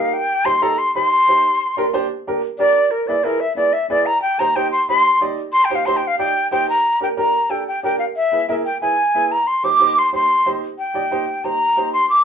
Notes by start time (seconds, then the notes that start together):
Already playing: D#4 G4 A#4 F5
0.14 G5
0.45 D#4 G4 C5 C6
0.62 D#4 G4 A4 A#5
0.78 C6
0.95 D#4 G4 C5 C6
1.28 D#4 G4 C5
1.77 D4 G4 A#4
1.93 D4 G4 C5
2.27 D4 G4 A#4
2.58 D4 G4 A#4 D5
2.91 A#4
3.07 E4 G#4 B4 D5
3.24 E4 G#4 A#4 B4
3.40 E5
3.56 E4 G#4 B4 D5
3.73 E5
3.90 E4 G#4 B4 D5
4.06 A#5
4.22 G5
4.39 D#4 G4 C5 A#5
4.56 D#4 G4 C5 G5
4.72 C6
4.88 D#4 G4 C5 C6
5.21 D#4 G4 D5
5.53 C6
5.65 G5
5.70 D#4 G4 C5
5.75 F5
5.86 D#4 G4 C5 C6
5.97 G5
6.07 F5
6.19 D#4 G4 D5 G5
6.51 D#4 G4 C5 G5
6.69 A#5
7.01 D4 G4 A#4 G5
7.17 D4 G4 A#4 A#5
7.50 D4 G4 A4 G5
7.68 G5
7.83 D4 G4 A#4 G5
7.99 F5
8.16 E5
8.32 E4 G#4 B4
8.49 E4 G#4 A#4 E5
8.66 G5
8.81 E4 G#4 B4 G#5
9.15 E4 G#4 B4
9.32 A#5
9.47 C6
9.64 D#4 G4 C5 D6
9.80 D#4 G4 C5
9.98 C6
10.13 D#4 G4 C5 C6
10.46 D#4 G4 C5
10.78 G5
10.94 D#4 G4 D5
11.11 D#4 G4 C5
11.44 D#4 G4 C5 A#5
11.77 D#4 G4 C5
11.93 C6
12.10 D6